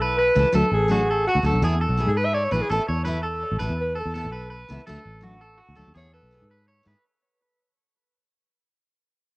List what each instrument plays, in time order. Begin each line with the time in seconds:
Already playing: fingered electric bass B1
0.02 clean electric guitar B4
0.18 alto saxophone B4, clean electric guitar B4
0.35 fingered electric bass C#2, steel-string acoustic guitar E3 B3 E4 A4
0.52 fingered electric bass D2, steel-string acoustic guitar F#3 A3 D4 A4, clean electric guitar A4, alto saxophone A4
0.71 fingered electric bass A1, alto saxophone G#4
0.88 steel-string acoustic guitar F#3 A3 D4 A4, clean electric guitar F#4
1.11 clean electric guitar A4
1.27 alto saxophone F#4, clean electric guitar F#4
1.35 fingered electric bass D2
1.43 fingered electric bass D2, steel-string acoustic guitar F#3 A3 D4 A4, clean electric guitar A4
1.54 fingered electric bass B1
1.62 fingered electric bass E2, steel-string acoustic guitar E3 B3 E4 G#4, clean electric guitar G#4
1.81 clean electric guitar A4
1.89 fingered electric bass B1
1.97 steel-string acoustic guitar E3 B3 E4 G#4
2.06 fingered electric bass G#2, alto saxophone G#4
2.17 clean electric guitar B4, alto saxophone B4
2.25 alto saxophone E5
2.34 clean electric guitar C#5, alto saxophone D5
2.44 alto saxophone C#5
2.51 fingered electric bass A#1, steel-string acoustic guitar E3 B3 E4, clean electric guitar B4, alto saxophone B4
2.55 steel-string acoustic guitar G#4
2.62 alto saxophone G#4
2.69 fingered electric bass A1, steel-string acoustic guitar E3 B3 E4 A4, clean electric guitar A4, alto saxophone A4
2.88 fingered electric bass E2, clean electric guitar C#5
3.05 steel-string acoustic guitar E3 B3 E4 A4, clean electric guitar B4
3.23 clean electric guitar A4
3.52 fingered electric bass A1
3.59 fingered electric bass A1, steel-string acoustic guitar E3 B3 E4 A4, clean electric guitar B4
3.69 fingered electric bass E2
3.81 alto saxophone B4
3.95 clean electric guitar A4
4.00 alto saxophone A4
4.05 fingered electric bass E2
4.14 steel-string acoustic guitar B3 E4 A4, clean electric guitar A4
4.25 fingered electric bass B1
4.32 clean electric guitar B4
4.50 clean electric guitar B4
4.69 fingered electric bass C#2, steel-string acoustic guitar E3 B3 E4 A4
4.87 fingered electric bass D2, steel-string acoustic guitar F#3 A3 D4 A4, clean electric guitar A4
5.05 fingered electric bass A1
5.21 steel-string acoustic guitar F#3 A3 D4 A4, clean electric guitar F#4
5.41 clean electric guitar A4
5.58 clean electric guitar F#4
5.69 fingered electric bass D2
5.75 fingered electric bass D2, steel-string acoustic guitar F#3 A3 D4 A4, clean electric guitar A4
5.87 fingered electric bass D#2
5.94 fingered electric bass E2, steel-string acoustic guitar E3 B3 E4 G#4, clean electric guitar G#4, alto saxophone C#5
6.14 clean electric guitar A4, alto saxophone B4
6.23 fingered electric bass B1
6.31 steel-string acoustic guitar B3 E4 G#4, muted steel-string acoustic guitar stroke
6.42 fingered electric bass G#2
6.51 clean electric guitar B4
6.68 clean electric guitar C#5
6.83 fingered electric bass G#2, steel-string acoustic guitar E3 B3 E4 G#4
6.87 clean electric guitar B4